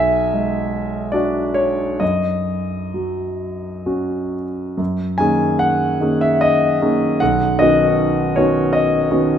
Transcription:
Already playing: B1 E5 G#5
0.33 G#3
1.12 D4 F#4 D5
1.54 C#5
2.00 F#2 D#5
2.94 F#3
3.86 C#4 F#4
4.77 F#2
5.18 D#3 A#3 C#4 G#4 G#5
5.59 F#5
6.00 D#3 A#3 C#4 G#4
6.21 E5
6.41 D#5
6.81 D#3 A#3 C#4 G#4
7.20 B1 F#5
7.59 D#3 B3 C#4 F#4 D#5
8.36 D#3 B3 C#4 F#4 C#5
8.73 D#5
9.10 D#3 B3 C#4 F#4

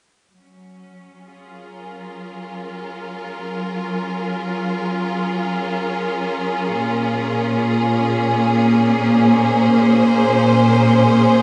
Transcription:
0.31 F#3
0.40 C#4
1.24 F4 G#4
1.51 A#4
6.79 A#2
7.09 A#3
9.00 C5

